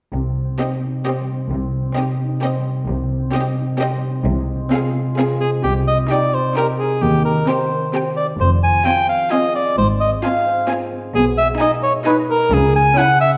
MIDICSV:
0, 0, Header, 1, 8, 480
1, 0, Start_track
1, 0, Key_signature, -3, "minor"
1, 0, Tempo, 458365
1, 142, Time_signature, 3, 2, 24, 8
1, 14005, End_track
2, 0, Start_track
2, 0, Title_t, "Violin section"
2, 0, Program_c, 0, 48
2, 628, Note_on_c, 0, 75, 38
2, 983, Note_off_c, 0, 75, 0
2, 1104, Note_on_c, 0, 75, 36
2, 1461, Note_off_c, 0, 75, 0
2, 2052, Note_on_c, 0, 75, 38
2, 2411, Note_off_c, 0, 75, 0
2, 2553, Note_on_c, 0, 75, 40
2, 2902, Note_off_c, 0, 75, 0
2, 3507, Note_on_c, 0, 75, 47
2, 3858, Note_off_c, 0, 75, 0
2, 3997, Note_on_c, 0, 75, 51
2, 4342, Note_off_c, 0, 75, 0
2, 4943, Note_on_c, 0, 77, 53
2, 5299, Note_off_c, 0, 77, 0
2, 5435, Note_on_c, 0, 77, 45
2, 5792, Note_off_c, 0, 77, 0
2, 6403, Note_on_c, 0, 79, 40
2, 6756, Note_off_c, 0, 79, 0
2, 6874, Note_on_c, 0, 79, 41
2, 7233, Note_off_c, 0, 79, 0
2, 7836, Note_on_c, 0, 79, 41
2, 8195, Note_off_c, 0, 79, 0
2, 8336, Note_on_c, 0, 79, 42
2, 8687, Note_off_c, 0, 79, 0
2, 9291, Note_on_c, 0, 80, 45
2, 9644, Note_off_c, 0, 80, 0
2, 9749, Note_on_c, 0, 80, 44
2, 10111, Note_off_c, 0, 80, 0
2, 10726, Note_on_c, 0, 80, 46
2, 11078, Note_off_c, 0, 80, 0
2, 11198, Note_on_c, 0, 80, 47
2, 11553, Note_off_c, 0, 80, 0
2, 12151, Note_on_c, 0, 80, 50
2, 12506, Note_off_c, 0, 80, 0
2, 12638, Note_on_c, 0, 80, 48
2, 12991, Note_off_c, 0, 80, 0
2, 13597, Note_on_c, 0, 80, 54
2, 13948, Note_off_c, 0, 80, 0
2, 14005, End_track
3, 0, Start_track
3, 0, Title_t, "Cor anglais"
3, 0, Program_c, 1, 69
3, 5659, Note_on_c, 1, 68, 52
3, 5770, Note_off_c, 1, 68, 0
3, 5901, Note_on_c, 1, 67, 55
3, 6011, Note_off_c, 1, 67, 0
3, 6153, Note_on_c, 1, 75, 57
3, 6261, Note_off_c, 1, 75, 0
3, 6403, Note_on_c, 1, 74, 57
3, 6644, Note_on_c, 1, 72, 51
3, 6659, Note_off_c, 1, 74, 0
3, 6877, Note_off_c, 1, 72, 0
3, 6883, Note_on_c, 1, 70, 57
3, 6989, Note_off_c, 1, 70, 0
3, 7109, Note_on_c, 1, 68, 52
3, 7353, Note_on_c, 1, 67, 55
3, 7369, Note_off_c, 1, 68, 0
3, 7585, Note_off_c, 1, 67, 0
3, 7591, Note_on_c, 1, 70, 51
3, 7836, Note_on_c, 1, 72, 43
3, 7852, Note_off_c, 1, 70, 0
3, 8319, Note_off_c, 1, 72, 0
3, 8551, Note_on_c, 1, 74, 55
3, 8662, Note_off_c, 1, 74, 0
3, 8800, Note_on_c, 1, 72, 52
3, 8909, Note_off_c, 1, 72, 0
3, 9043, Note_on_c, 1, 80, 59
3, 9272, Note_on_c, 1, 79, 62
3, 9287, Note_off_c, 1, 80, 0
3, 9513, Note_off_c, 1, 79, 0
3, 9520, Note_on_c, 1, 77, 56
3, 9756, Note_on_c, 1, 75, 63
3, 9772, Note_off_c, 1, 77, 0
3, 9998, Note_off_c, 1, 75, 0
3, 10002, Note_on_c, 1, 74, 57
3, 10233, Note_off_c, 1, 74, 0
3, 10240, Note_on_c, 1, 72, 63
3, 10347, Note_off_c, 1, 72, 0
3, 10475, Note_on_c, 1, 75, 54
3, 10583, Note_off_c, 1, 75, 0
3, 10718, Note_on_c, 1, 77, 50
3, 11187, Note_off_c, 1, 77, 0
3, 11679, Note_on_c, 1, 68, 65
3, 11785, Note_off_c, 1, 68, 0
3, 11917, Note_on_c, 1, 76, 61
3, 12023, Note_off_c, 1, 76, 0
3, 12163, Note_on_c, 1, 75, 60
3, 12268, Note_off_c, 1, 75, 0
3, 12388, Note_on_c, 1, 73, 62
3, 12496, Note_off_c, 1, 73, 0
3, 12633, Note_on_c, 1, 71, 64
3, 12740, Note_off_c, 1, 71, 0
3, 12884, Note_on_c, 1, 70, 68
3, 13124, Note_on_c, 1, 68, 67
3, 13140, Note_off_c, 1, 70, 0
3, 13356, Note_off_c, 1, 68, 0
3, 13362, Note_on_c, 1, 80, 68
3, 13591, Note_on_c, 1, 78, 74
3, 13606, Note_off_c, 1, 80, 0
3, 13828, Note_off_c, 1, 78, 0
3, 13832, Note_on_c, 1, 76, 63
3, 13939, Note_off_c, 1, 76, 0
3, 14005, End_track
4, 0, Start_track
4, 0, Title_t, "Violin section"
4, 0, Program_c, 2, 48
4, 624, Note_on_c, 2, 67, 37
4, 981, Note_off_c, 2, 67, 0
4, 1120, Note_on_c, 2, 67, 35
4, 1470, Note_off_c, 2, 67, 0
4, 2054, Note_on_c, 2, 67, 37
4, 2412, Note_off_c, 2, 67, 0
4, 2534, Note_on_c, 2, 67, 37
4, 2891, Note_off_c, 2, 67, 0
4, 3496, Note_on_c, 2, 67, 43
4, 3852, Note_off_c, 2, 67, 0
4, 3986, Note_on_c, 2, 67, 44
4, 4337, Note_off_c, 2, 67, 0
4, 4952, Note_on_c, 2, 68, 49
4, 5305, Note_off_c, 2, 68, 0
4, 5437, Note_on_c, 2, 68, 46
4, 5793, Note_off_c, 2, 68, 0
4, 6394, Note_on_c, 2, 67, 37
4, 6751, Note_off_c, 2, 67, 0
4, 6887, Note_on_c, 2, 67, 40
4, 7240, Note_off_c, 2, 67, 0
4, 7839, Note_on_c, 2, 67, 38
4, 8197, Note_off_c, 2, 67, 0
4, 8327, Note_on_c, 2, 67, 42
4, 8682, Note_off_c, 2, 67, 0
4, 9274, Note_on_c, 2, 65, 41
4, 9635, Note_off_c, 2, 65, 0
4, 9753, Note_on_c, 2, 65, 43
4, 10113, Note_off_c, 2, 65, 0
4, 10718, Note_on_c, 2, 65, 44
4, 11074, Note_off_c, 2, 65, 0
4, 11185, Note_on_c, 2, 65, 45
4, 11546, Note_off_c, 2, 65, 0
4, 12148, Note_on_c, 2, 63, 47
4, 12505, Note_off_c, 2, 63, 0
4, 12635, Note_on_c, 2, 63, 50
4, 12989, Note_off_c, 2, 63, 0
4, 13590, Note_on_c, 2, 64, 48
4, 13944, Note_off_c, 2, 64, 0
4, 14005, End_track
5, 0, Start_track
5, 0, Title_t, "Harp"
5, 0, Program_c, 3, 46
5, 144, Note_on_c, 3, 48, 37
5, 301, Note_on_c, 3, 55, 25
5, 465, Note_on_c, 3, 60, 27
5, 625, Note_on_c, 3, 63, 29
5, 779, Note_on_c, 3, 67, 28
5, 928, Note_off_c, 3, 63, 0
5, 940, Note_on_c, 3, 63, 28
5, 1086, Note_off_c, 3, 60, 0
5, 1099, Note_on_c, 3, 60, 29
5, 1250, Note_off_c, 3, 55, 0
5, 1263, Note_on_c, 3, 55, 28
5, 1410, Note_off_c, 3, 60, 0
5, 1423, Note_on_c, 3, 60, 28
5, 1570, Note_off_c, 3, 48, 0
5, 1583, Note_on_c, 3, 48, 39
5, 1728, Note_off_c, 3, 55, 0
5, 1740, Note_on_c, 3, 55, 27
5, 1893, Note_off_c, 3, 60, 0
5, 1906, Note_on_c, 3, 60, 28
5, 2052, Note_off_c, 3, 63, 0
5, 2065, Note_on_c, 3, 63, 34
5, 2203, Note_off_c, 3, 67, 0
5, 2216, Note_on_c, 3, 67, 30
5, 2372, Note_off_c, 3, 63, 0
5, 2384, Note_on_c, 3, 63, 31
5, 2517, Note_off_c, 3, 60, 0
5, 2530, Note_on_c, 3, 60, 30
5, 2687, Note_off_c, 3, 55, 0
5, 2700, Note_on_c, 3, 55, 32
5, 2850, Note_off_c, 3, 60, 0
5, 2862, Note_on_c, 3, 60, 30
5, 3003, Note_off_c, 3, 48, 0
5, 3016, Note_on_c, 3, 48, 42
5, 3161, Note_off_c, 3, 55, 0
5, 3173, Note_on_c, 3, 55, 33
5, 3324, Note_off_c, 3, 60, 0
5, 3337, Note_on_c, 3, 60, 33
5, 3477, Note_off_c, 3, 63, 0
5, 3490, Note_on_c, 3, 63, 36
5, 3636, Note_off_c, 3, 67, 0
5, 3648, Note_on_c, 3, 67, 36
5, 3798, Note_off_c, 3, 63, 0
5, 3811, Note_on_c, 3, 63, 37
5, 3962, Note_off_c, 3, 60, 0
5, 3975, Note_on_c, 3, 60, 40
5, 4123, Note_off_c, 3, 55, 0
5, 4136, Note_on_c, 3, 55, 36
5, 4281, Note_off_c, 3, 60, 0
5, 4293, Note_on_c, 3, 60, 36
5, 4430, Note_off_c, 3, 48, 0
5, 4442, Note_on_c, 3, 48, 54
5, 4469, Note_off_c, 3, 67, 0
5, 4470, Note_off_c, 3, 63, 0
5, 4473, Note_off_c, 3, 55, 0
5, 4606, Note_on_c, 3, 56, 37
5, 4754, Note_off_c, 3, 60, 0
5, 4767, Note_on_c, 3, 60, 40
5, 4931, Note_on_c, 3, 65, 43
5, 5093, Note_on_c, 3, 68, 39
5, 5246, Note_off_c, 3, 65, 0
5, 5259, Note_on_c, 3, 65, 38
5, 5412, Note_off_c, 3, 60, 0
5, 5425, Note_on_c, 3, 60, 36
5, 5563, Note_off_c, 3, 56, 0
5, 5576, Note_on_c, 3, 56, 33
5, 5739, Note_off_c, 3, 60, 0
5, 5751, Note_on_c, 3, 60, 31
5, 5896, Note_off_c, 3, 48, 0
5, 5909, Note_on_c, 3, 48, 40
5, 5924, Note_off_c, 3, 56, 0
5, 5927, Note_off_c, 3, 68, 0
5, 5928, Note_off_c, 3, 65, 0
5, 6132, Note_off_c, 3, 60, 0
5, 6145, Note_on_c, 3, 60, 30
5, 6386, Note_on_c, 3, 67, 33
5, 6645, Note_on_c, 3, 75, 34
5, 6868, Note_off_c, 3, 67, 0
5, 6880, Note_on_c, 3, 67, 34
5, 7132, Note_on_c, 3, 63, 29
5, 7354, Note_on_c, 3, 51, 42
5, 7375, Note_off_c, 3, 48, 0
5, 7590, Note_off_c, 3, 63, 0
5, 7603, Note_on_c, 3, 63, 32
5, 7843, Note_on_c, 3, 72, 36
5, 8081, Note_on_c, 3, 79, 34
5, 8313, Note_off_c, 3, 72, 0
5, 8326, Note_on_c, 3, 72, 35
5, 8545, Note_off_c, 3, 67, 0
5, 8558, Note_on_c, 3, 67, 29
5, 8802, Note_on_c, 3, 53, 43
5, 8819, Note_off_c, 3, 51, 0
5, 8819, Note_off_c, 3, 67, 0
5, 8822, Note_off_c, 3, 79, 0
5, 8824, Note_off_c, 3, 63, 0
5, 8826, Note_off_c, 3, 75, 0
5, 9029, Note_off_c, 3, 60, 0
5, 9041, Note_on_c, 3, 60, 33
5, 9281, Note_on_c, 3, 68, 35
5, 9527, Note_on_c, 3, 80, 37
5, 9751, Note_off_c, 3, 68, 0
5, 9763, Note_on_c, 3, 68, 35
5, 9993, Note_off_c, 3, 60, 0
5, 10005, Note_on_c, 3, 60, 30
5, 10239, Note_on_c, 3, 44, 45
5, 10475, Note_on_c, 3, 56, 35
5, 10702, Note_off_c, 3, 68, 0
5, 10715, Note_on_c, 3, 68, 40
5, 10943, Note_off_c, 3, 72, 0
5, 10956, Note_on_c, 3, 72, 39
5, 11182, Note_off_c, 3, 68, 0
5, 11194, Note_on_c, 3, 68, 41
5, 11423, Note_off_c, 3, 60, 0
5, 11436, Note_on_c, 3, 60, 33
5, 11670, Note_on_c, 3, 47, 48
5, 11692, Note_off_c, 3, 44, 0
5, 11693, Note_off_c, 3, 53, 0
5, 11693, Note_off_c, 3, 60, 0
5, 11693, Note_off_c, 3, 72, 0
5, 11893, Note_off_c, 3, 56, 0
5, 11906, Note_on_c, 3, 56, 39
5, 12139, Note_off_c, 3, 68, 0
5, 12152, Note_on_c, 3, 68, 42
5, 12623, Note_off_c, 3, 68, 0
5, 12636, Note_on_c, 3, 68, 39
5, 12878, Note_on_c, 3, 63, 37
5, 13116, Note_on_c, 3, 49, 53
5, 13126, Note_off_c, 3, 47, 0
5, 13133, Note_off_c, 3, 63, 0
5, 13357, Note_on_c, 3, 61, 41
5, 13581, Note_off_c, 3, 68, 0
5, 13594, Note_on_c, 3, 68, 43
5, 13611, Note_off_c, 3, 80, 0
5, 14005, Note_off_c, 3, 49, 0
5, 14005, Note_off_c, 3, 56, 0
5, 14005, Note_off_c, 3, 61, 0
5, 14005, Note_off_c, 3, 68, 0
5, 14005, End_track
6, 0, Start_track
6, 0, Title_t, "Viola section"
6, 0, Program_c, 4, 48
6, 623, Note_on_c, 4, 60, 38
6, 981, Note_off_c, 4, 60, 0
6, 1109, Note_on_c, 4, 60, 36
6, 1464, Note_off_c, 4, 60, 0
6, 2063, Note_on_c, 4, 60, 41
6, 2417, Note_off_c, 4, 60, 0
6, 2544, Note_on_c, 4, 60, 38
6, 2897, Note_off_c, 4, 60, 0
6, 3494, Note_on_c, 4, 60, 46
6, 3851, Note_off_c, 4, 60, 0
6, 3974, Note_on_c, 4, 60, 48
6, 4330, Note_off_c, 4, 60, 0
6, 4919, Note_on_c, 4, 60, 53
6, 5287, Note_off_c, 4, 60, 0
6, 5409, Note_on_c, 4, 60, 46
6, 5778, Note_off_c, 4, 60, 0
6, 6389, Note_on_c, 4, 63, 40
6, 6749, Note_off_c, 4, 63, 0
6, 6881, Note_on_c, 4, 63, 39
6, 7237, Note_off_c, 4, 63, 0
6, 7833, Note_on_c, 4, 60, 39
6, 8194, Note_off_c, 4, 60, 0
6, 8307, Note_on_c, 4, 60, 41
6, 8671, Note_off_c, 4, 60, 0
6, 9273, Note_on_c, 4, 60, 42
6, 9634, Note_off_c, 4, 60, 0
6, 9756, Note_on_c, 4, 60, 43
6, 10114, Note_off_c, 4, 60, 0
6, 10719, Note_on_c, 4, 60, 45
6, 11074, Note_off_c, 4, 60, 0
6, 11203, Note_on_c, 4, 60, 45
6, 11556, Note_off_c, 4, 60, 0
6, 12155, Note_on_c, 4, 63, 47
6, 12509, Note_off_c, 4, 63, 0
6, 12631, Note_on_c, 4, 63, 51
6, 12987, Note_off_c, 4, 63, 0
6, 13576, Note_on_c, 4, 61, 51
6, 13937, Note_off_c, 4, 61, 0
6, 14005, End_track
7, 0, Start_track
7, 0, Title_t, "Cello section"
7, 0, Program_c, 5, 48
7, 139, Note_on_c, 5, 48, 44
7, 523, Note_off_c, 5, 48, 0
7, 1584, Note_on_c, 5, 48, 47
7, 1960, Note_off_c, 5, 48, 0
7, 3015, Note_on_c, 5, 48, 51
7, 3394, Note_off_c, 5, 48, 0
7, 4449, Note_on_c, 5, 48, 61
7, 4831, Note_off_c, 5, 48, 0
7, 5898, Note_on_c, 5, 48, 51
7, 6284, Note_off_c, 5, 48, 0
7, 7353, Note_on_c, 5, 39, 51
7, 7734, Note_off_c, 5, 39, 0
7, 8793, Note_on_c, 5, 41, 52
7, 9178, Note_off_c, 5, 41, 0
7, 10232, Note_on_c, 5, 44, 52
7, 10612, Note_off_c, 5, 44, 0
7, 11670, Note_on_c, 5, 47, 59
7, 12048, Note_off_c, 5, 47, 0
7, 13111, Note_on_c, 5, 49, 64
7, 13488, Note_off_c, 5, 49, 0
7, 14005, End_track
8, 0, Start_track
8, 0, Title_t, "Double bass section"
8, 0, Program_c, 6, 48
8, 140, Note_on_c, 6, 36, 46
8, 523, Note_off_c, 6, 36, 0
8, 1583, Note_on_c, 6, 36, 47
8, 1959, Note_off_c, 6, 36, 0
8, 3014, Note_on_c, 6, 36, 55
8, 3393, Note_off_c, 6, 36, 0
8, 4459, Note_on_c, 6, 36, 63
8, 4836, Note_off_c, 6, 36, 0
8, 5911, Note_on_c, 6, 36, 50
8, 6291, Note_off_c, 6, 36, 0
8, 7352, Note_on_c, 6, 39, 50
8, 7734, Note_off_c, 6, 39, 0
8, 8796, Note_on_c, 6, 29, 56
8, 9180, Note_off_c, 6, 29, 0
8, 10242, Note_on_c, 6, 32, 56
8, 10617, Note_off_c, 6, 32, 0
8, 11684, Note_on_c, 6, 35, 61
8, 12056, Note_off_c, 6, 35, 0
8, 13111, Note_on_c, 6, 37, 68
8, 13489, Note_off_c, 6, 37, 0
8, 14005, End_track
0, 0, End_of_file